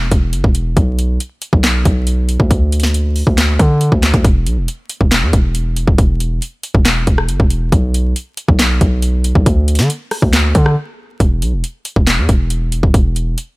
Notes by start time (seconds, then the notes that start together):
Already playing: E1
0.11 E1, kick, closed hi-hat
0.33 F#1, closed hi-hat
0.44 E1, kick
0.55 closed hi-hat
0.77 B1, kick, closed hi-hat
0.99 closed hi-hat
1.20 closed hi-hat
1.42 closed hi-hat
1.53 B1, kick
1.64 snare, clap, closed hi-hat
1.85 B1, kick, closed hi-hat
2.07 closed hi-hat
2.29 closed hi-hat
2.40 D2, kick
2.51 kick, closed hi-hat
2.72 closed hi-hat
2.80 snare, closed hi-hat
2.87 closed hi-hat
2.94 closed hi-hat
3.16 open hi-hat
3.27 D2, kick
3.38 snare, clap, closed hi-hat
3.59 D3, kick, closed hi-hat
3.81 closed hi-hat
3.92 D2, kick
4.03 snare, clap, closed hi-hat, open hi-hat
4.14 D2, kick, closed hi-hat
4.25 E1, kick, closed hi-hat
4.46 B1, closed hi-hat
4.57 E1
4.68 closed hi-hat
4.89 closed hi-hat
5.01 E1, kick
5.11 snare, clap, closed hi-hat
5.22 E2
5.33 E1, kick, closed hi-hat
5.55 closed hi-hat
5.76 closed hi-hat
5.87 D1, kick
5.98 E1, kick, closed hi-hat
6.20 closed hi-hat
6.42 closed hi-hat
6.63 closed hi-hat
6.75 E1, kick
6.85 snare, clap, closed hi-hat
7.07 E1, kick, closed hi-hat
7.18 cross-stick
7.28 F#1, closed hi-hat
7.40 E1, kick
7.50 closed hi-hat
7.72 B1, kick, closed hi-hat
7.94 closed hi-hat
8.16 closed hi-hat
8.37 closed hi-hat
8.48 B1, kick
8.59 snare, clap, closed hi-hat
8.81 B1, kick, closed hi-hat
9.02 closed hi-hat
9.24 closed hi-hat
9.35 B1, kick
9.46 D2, kick, closed hi-hat
9.68 closed hi-hat
9.75 D3, snare, closed hi-hat
9.82 closed hi-hat
9.90 closed hi-hat
10.11 cross-stick, open hi-hat
10.22 D2, kick
10.33 snare, clap, closed hi-hat
10.55 D3, kick, closed hi-hat
10.66 cross-stick
11.20 E1, kick, closed hi-hat
11.42 B1, closed hi-hat
11.53 E1
11.64 closed hi-hat
11.85 closed hi-hat
11.96 E1, kick
12.07 snare, clap, closed hi-hat
12.18 E2
12.29 E1, kick, closed hi-hat
12.50 closed hi-hat
12.72 closed hi-hat
12.83 D1, kick
12.94 E1, kick, closed hi-hat
13.16 closed hi-hat
13.38 closed hi-hat